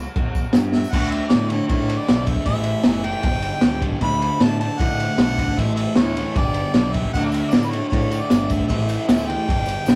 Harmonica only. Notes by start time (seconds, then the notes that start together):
0.74 E5
0.92 F#5
1.11 E5
1.29 D5
1.50 C#5
1.68 C#5
1.98 D5
2.27 E5
2.46 E5
3.06 G5
4.03 B5
4.24 B5
4.42 A5
4.60 A5
4.80 F#5
5.21 F#5
5.59 E5
5.75 E5
5.97 C#5
6.37 D5
6.93 E5
7.13 F#5
7.25 D5
7.31 E5
7.51 D5
7.65 B4
7.69 C#5
7.89 C#5
8.20 D5
8.52 E5
8.68 E5
9.08 E5
9.29 G5